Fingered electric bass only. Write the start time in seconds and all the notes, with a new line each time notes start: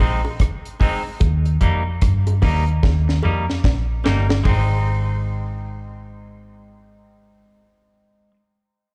0.00 A#1
1.22 D#2
1.62 F2
2.03 G2
2.43 D#2
2.84 D#2
3.25 F2
3.65 A#1
4.06 G1
4.46 G#1